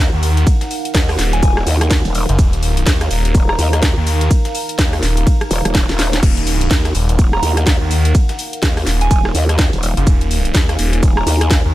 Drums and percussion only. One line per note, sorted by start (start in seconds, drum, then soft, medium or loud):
0.23 open hi-hat loud
0.23 shaker medium
0.37 snare medium
0.37 closed hi-hat medium
0.47 kick loud
0.47 ride medium
0.47 shaker medium
0.61 snare medium
0.61 closed hi-hat medium
0.71 open hi-hat loud
0.71 shaker medium
0.85 closed hi-hat medium
0.95 kick loud
0.95 snare loud
0.95 ride medium
0.95 shaker medium
1.09 cross-stick medium
1.09 open hi-hat medium
1.19 snare medium
1.19 open hi-hat loud
1.19 shaker medium
1.33 closed hi-hat medium
1.43 kick loud
1.43 ride medium
1.43 shaker medium
1.57 cross-stick medium
1.57 snare soft
1.67 open hi-hat loud
1.67 shaker medium
1.81 cross-stick medium
1.81 closed hi-hat medium
1.91 kick loud
1.91 snare loud
1.91 ride medium
1.91 shaker medium
2.05 closed hi-hat soft
2.15 open hi-hat loud
2.15 shaker medium
2.29 closed hi-hat medium
2.39 kick loud
2.39 ride medium
2.39 shaker medium
2.53 closed hi-hat medium
2.63 open hi-hat loud
2.63 shaker medium
2.77 closed hi-hat medium
2.86 kick loud
2.86 snare loud
2.86 ride medium
2.86 shaker medium
3.01 cross-stick medium
3.01 snare medium
3.01 closed hi-hat medium
3.11 open hi-hat loud
3.11 shaker medium
3.25 closed hi-hat medium
3.35 kick loud
3.35 ride medium
3.35 shaker medium
3.49 cross-stick medium
3.59 open hi-hat loud
3.59 shaker medium
3.73 cross-stick medium
3.73 closed hi-hat medium
3.83 kick loud
3.83 snare loud
3.83 ride medium
3.83 shaker medium
4.07 open hi-hat loud
4.07 shaker medium
4.21 snare medium
4.21 closed hi-hat medium
4.31 kick loud
4.31 ride medium
4.31 shaker medium
4.45 snare medium
4.45 closed hi-hat medium
4.55 open hi-hat loud
4.55 shaker medium
4.69 closed hi-hat medium
4.79 kick loud
4.79 snare loud
4.79 ride medium
4.79 shaker medium
4.93 cross-stick medium
4.93 open hi-hat medium
5.03 snare medium
5.03 open hi-hat loud
5.03 shaker medium
5.17 closed hi-hat medium
5.27 kick loud
5.27 ride medium
5.27 shaker medium
5.41 cross-stick medium
5.41 closed hi-hat soft
5.51 open hi-hat loud
5.51 shaker medium
5.65 cross-stick medium
5.65 closed hi-hat medium
5.75 kick loud
5.75 snare loud
5.75 ride medium
5.75 shaker medium
5.89 snare medium
5.89 closed hi-hat soft
5.99 snare medium
5.99 open hi-hat loud
5.99 shaker medium
6.13 snare medium
6.13 closed hi-hat medium
6.23 kick loud
6.23 crash medium
6.23 ride medium
6.23 shaker medium
6.37 closed hi-hat medium
6.47 open hi-hat loud
6.47 shaker medium
6.61 closed hi-hat medium
6.71 kick loud
6.71 snare loud
6.71 ride medium
6.71 shaker medium
6.85 cross-stick medium
6.85 snare medium
6.85 closed hi-hat medium
6.95 open hi-hat loud
6.95 shaker medium
7.09 closed hi-hat medium
7.19 kick loud
7.19 ride medium
7.19 shaker medium
7.33 cross-stick medium
7.43 open hi-hat loud
7.43 shaker medium
7.57 cross-stick medium
7.57 closed hi-hat medium
7.67 kick loud
7.67 snare loud
7.67 ride medium
7.67 shaker medium
7.91 open hi-hat loud
7.91 shaker medium
8.05 snare medium
8.05 closed hi-hat medium
8.15 kick loud
8.15 ride medium
8.15 shaker medium
8.29 snare medium
8.29 closed hi-hat medium
8.39 open hi-hat loud
8.39 shaker medium
8.53 closed hi-hat medium
8.63 kick loud
8.63 snare loud
8.63 ride medium
8.63 shaker medium
8.77 cross-stick medium
8.77 open hi-hat medium
8.87 snare medium
8.87 open hi-hat loud
8.87 shaker medium
9.01 closed hi-hat medium
9.11 kick loud
9.11 ride medium
9.11 shaker medium
9.25 cross-stick medium
9.25 snare soft
9.35 open hi-hat loud
9.35 shaker medium
9.49 cross-stick medium
9.49 closed hi-hat medium
9.59 kick loud
9.59 snare loud
9.59 ride medium
9.59 shaker medium
9.73 closed hi-hat soft
9.83 open hi-hat loud
9.83 shaker medium
9.97 closed hi-hat medium
10.07 kick loud
10.07 ride medium
10.07 shaker medium
10.21 closed hi-hat medium
10.31 open hi-hat loud
10.31 shaker medium
10.45 closed hi-hat medium
10.55 kick loud
10.55 snare loud
10.55 ride medium
10.55 shaker medium
10.69 cross-stick medium
10.69 snare medium
10.69 closed hi-hat medium
10.79 open hi-hat loud
10.79 shaker medium
10.93 closed hi-hat medium
11.03 kick loud
11.03 ride medium
11.03 shaker medium
11.17 cross-stick medium
11.27 open hi-hat loud
11.27 shaker medium
11.41 cross-stick medium
11.41 closed hi-hat medium
11.51 kick loud
11.51 snare loud
11.51 ride medium
11.51 shaker medium